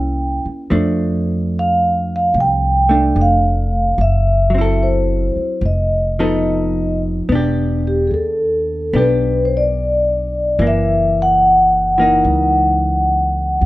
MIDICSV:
0, 0, Header, 1, 5, 480
1, 0, Start_track
1, 0, Tempo, 816327
1, 413, Time_signature, 4, 2, 24, 8
1, 2814, Tempo, 831025
1, 6174, Tempo, 819672
1, 7962, End_track
2, 0, Start_track
2, 0, Title_t, "Vibraphone"
2, 0, Program_c, 0, 11
2, 0, Note_on_c, 0, 79, 84
2, 257, Note_off_c, 0, 79, 0
2, 936, Note_on_c, 0, 77, 87
2, 1251, Note_off_c, 0, 77, 0
2, 1269, Note_on_c, 0, 77, 84
2, 1399, Note_off_c, 0, 77, 0
2, 1414, Note_on_c, 0, 79, 99
2, 1885, Note_off_c, 0, 79, 0
2, 1890, Note_on_c, 0, 77, 84
2, 2359, Note_on_c, 0, 76, 80
2, 2365, Note_off_c, 0, 77, 0
2, 2839, Note_on_c, 0, 72, 68
2, 2841, Note_off_c, 0, 76, 0
2, 3317, Note_off_c, 0, 72, 0
2, 3317, Note_on_c, 0, 75, 65
2, 4090, Note_off_c, 0, 75, 0
2, 4597, Note_on_c, 0, 67, 62
2, 4713, Note_on_c, 0, 68, 45
2, 4719, Note_off_c, 0, 67, 0
2, 4736, Note_off_c, 0, 68, 0
2, 4751, Note_on_c, 0, 69, 64
2, 5237, Note_off_c, 0, 69, 0
2, 5238, Note_on_c, 0, 71, 72
2, 5507, Note_off_c, 0, 71, 0
2, 5510, Note_on_c, 0, 72, 64
2, 5553, Note_off_c, 0, 72, 0
2, 5577, Note_on_c, 0, 74, 84
2, 6208, Note_off_c, 0, 74, 0
2, 6214, Note_on_c, 0, 76, 86
2, 6533, Note_off_c, 0, 76, 0
2, 6536, Note_on_c, 0, 78, 87
2, 7935, Note_off_c, 0, 78, 0
2, 7962, End_track
3, 0, Start_track
3, 0, Title_t, "Hollow-body jazz guitar"
3, 0, Program_c, 1, 26
3, 0, Note_on_c, 1, 58, 44
3, 0, Note_on_c, 1, 61, 48
3, 0, Note_on_c, 1, 64, 48
3, 412, Note_off_c, 1, 58, 0
3, 413, Note_on_c, 1, 53, 48
3, 415, Note_off_c, 1, 61, 0
3, 418, Note_off_c, 1, 64, 0
3, 418, Note_on_c, 1, 57, 46
3, 422, Note_on_c, 1, 62, 50
3, 1693, Note_off_c, 1, 57, 0
3, 1701, Note_on_c, 1, 57, 40
3, 1702, Note_off_c, 1, 62, 0
3, 1709, Note_on_c, 1, 62, 41
3, 2331, Note_off_c, 1, 53, 0
3, 2332, Note_off_c, 1, 57, 0
3, 2337, Note_off_c, 1, 62, 0
3, 2647, Note_on_c, 1, 54, 34
3, 2673, Note_on_c, 1, 60, 35
3, 2694, Note_on_c, 1, 64, 38
3, 2712, Note_on_c, 1, 69, 42
3, 3283, Note_off_c, 1, 54, 0
3, 3296, Note_off_c, 1, 60, 0
3, 3307, Note_off_c, 1, 64, 0
3, 3315, Note_off_c, 1, 69, 0
3, 3627, Note_on_c, 1, 53, 37
3, 3631, Note_on_c, 1, 59, 43
3, 3632, Note_on_c, 1, 63, 45
3, 3632, Note_on_c, 1, 69, 43
3, 4253, Note_off_c, 1, 59, 0
3, 4256, Note_off_c, 1, 53, 0
3, 4258, Note_off_c, 1, 63, 0
3, 4259, Note_off_c, 1, 69, 0
3, 4260, Note_on_c, 1, 59, 45
3, 4278, Note_on_c, 1, 62, 49
3, 4296, Note_on_c, 1, 67, 52
3, 5204, Note_off_c, 1, 59, 0
3, 5211, Note_on_c, 1, 59, 35
3, 5214, Note_off_c, 1, 62, 0
3, 5221, Note_off_c, 1, 67, 0
3, 5221, Note_on_c, 1, 62, 37
3, 5228, Note_on_c, 1, 67, 37
3, 6167, Note_on_c, 1, 52, 42
3, 6171, Note_off_c, 1, 59, 0
3, 6176, Note_off_c, 1, 62, 0
3, 6180, Note_off_c, 1, 67, 0
3, 6181, Note_on_c, 1, 58, 39
3, 6973, Note_off_c, 1, 52, 0
3, 6980, Note_on_c, 1, 52, 33
3, 6982, Note_off_c, 1, 58, 0
3, 6989, Note_on_c, 1, 58, 38
3, 6999, Note_on_c, 1, 63, 44
3, 7962, Note_off_c, 1, 52, 0
3, 7962, Note_off_c, 1, 58, 0
3, 7962, Note_off_c, 1, 63, 0
3, 7962, End_track
4, 0, Start_track
4, 0, Title_t, "Upright bass"
4, 0, Program_c, 2, 32
4, 0, Note_on_c, 2, 36, 64
4, 240, Note_off_c, 2, 36, 0
4, 418, Note_on_c, 2, 41, 65
4, 1350, Note_off_c, 2, 41, 0
4, 1377, Note_on_c, 2, 36, 73
4, 1829, Note_off_c, 2, 36, 0
4, 1856, Note_on_c, 2, 29, 70
4, 2311, Note_off_c, 2, 29, 0
4, 2339, Note_on_c, 2, 30, 70
4, 3120, Note_off_c, 2, 30, 0
4, 3291, Note_on_c, 2, 29, 75
4, 4229, Note_off_c, 2, 29, 0
4, 4259, Note_on_c, 2, 28, 69
4, 4714, Note_off_c, 2, 28, 0
4, 4731, Note_on_c, 2, 39, 54
4, 5190, Note_off_c, 2, 39, 0
4, 5210, Note_on_c, 2, 35, 74
4, 6147, Note_off_c, 2, 35, 0
4, 6165, Note_on_c, 2, 30, 72
4, 7110, Note_off_c, 2, 30, 0
4, 7135, Note_on_c, 2, 37, 66
4, 7917, Note_off_c, 2, 37, 0
4, 7937, Note_on_c, 2, 40, 67
4, 7962, Note_off_c, 2, 40, 0
4, 7962, End_track
5, 0, Start_track
5, 0, Title_t, "Muted upright bass strokes"
5, 267, Note_on_c, 9, 29, 39
5, 326, Note_off_c, 9, 29, 0
5, 3145, Note_on_c, 9, 29, 33
5, 3202, Note_off_c, 9, 29, 0
5, 7962, End_track
0, 0, End_of_file